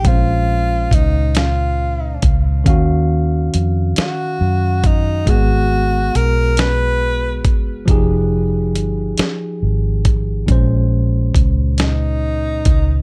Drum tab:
HH |x-xx-x|x-xx-x|x-xx-x|x-xx-x|
SD |---o--|---o--|---o--|---o--|
BD |o-o--o|o----o|o----o|o----o|

HH |x-xx-x|
SD |---o--|
BD |o-o--o|